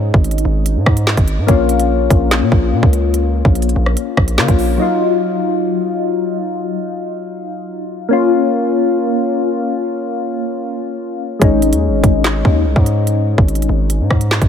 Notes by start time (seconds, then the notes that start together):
Already playing: G#2 G#3 C#4 D#4
0.14 G#1, kick
0.24 closed hi-hat
0.31 closed hi-hat
0.38 closed hi-hat
0.45 G#1
0.66 closed hi-hat
0.76 G#2
0.86 G#2, kick, cross-stick
0.97 closed hi-hat
1.07 snare, clap
1.17 G#1, kick, closed hi-hat
1.28 closed hi-hat
1.38 G#2
1.47 A#1 A#3 C#4, kick, closed hi-hat
1.51 F4
1.69 closed hi-hat
1.80 closed hi-hat
2.10 A#1, kick, closed hi-hat
2.31 snare, clap, closed hi-hat
2.42 A#2
2.52 A#1, kick
2.73 A#2
2.83 C#2, kick
2.93 closed hi-hat
3.14 closed hi-hat
3.45 A#1, kick
3.55 closed hi-hat
3.62 closed hi-hat
3.69 closed hi-hat
3.76 A#1
3.86 cross-stick
3.97 closed hi-hat
4.17 A#1, kick, cross-stick
4.28 closed hi-hat
4.37 C#3 A#3 C#4 F4, snare, clap
4.48 A#1, kick, closed hi-hat
4.59 open hi-hat
4.78 F#3 D#4
4.82 F4
8.09 A#3 C#4
8.13 F4
11.39 G#1 G#3 C#4, kick, closed hi-hat
11.44 D#4
11.62 closed hi-hat
11.73 D#2, closed hi-hat
11.88 G#1
12.04 G#1, kick, closed hi-hat
12.24 snare, clap, closed hi-hat
12.45 D#2, kick
12.66 C2
12.76 G#2, kick
12.86 closed hi-hat
13.07 closed hi-hat
13.38 G#1, kick
13.48 closed hi-hat
13.55 closed hi-hat
13.62 closed hi-hat
13.69 G#1
13.90 closed hi-hat
14.00 G#2
14.10 G#2, kick, cross-stick
14.21 closed hi-hat
14.31 snare, clap
14.42 G#1, kick, closed hi-hat